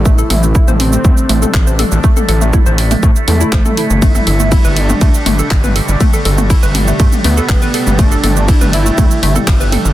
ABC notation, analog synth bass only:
X:1
M:4/4
L:1/16
Q:1/4=121
K:Gmix
V:1 name="Analog synth bass" clef=bass
A,,, z A,,,2 z A,,,2 z E,, z A,,, z A,,,2 z A,,, | z2 A,,,2 z A,,,2 z A,, z E,, z A,,, z2 G,,,- | G,,, z G,,,2 z G,,,2 z D,, z G,,, z G,,,2 z G,,, | z2 G,,,2 z G,,,2 z G,, z D,, z G,,, z2 G,,,- |
G,,, z G,,,2 z G,,,2 z D,, z G,,, z G,,,2 z G,,, |]